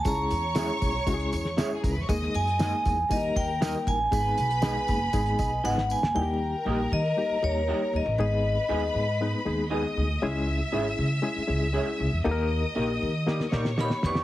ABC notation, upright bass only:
X:1
M:4/4
L:1/16
Q:1/4=118
K:D#phr
V:1 name="Upright bass" clef=bass
C,,2 E,,4 B,,,2 C,,2 E,,3 z C,, E,, | D,,2 F,,4 E,,2 D,,2 D,,4 =A,,,2 | G,,,2 B,,,4 F,,,2 G,,,2 B,,,2 G,,,3 F,,, | D,,4 A,,,2 D,2 z2 D,,3 z D,, =A,,, |
G,,,4 D,,2 G,,4 D,,4 =D,,2 | C,,4 G,,,2 C,2 z2 C,,3 z C,, E,, | D,,4 A,,,2 D,4 A,,4 ^E,,2 |]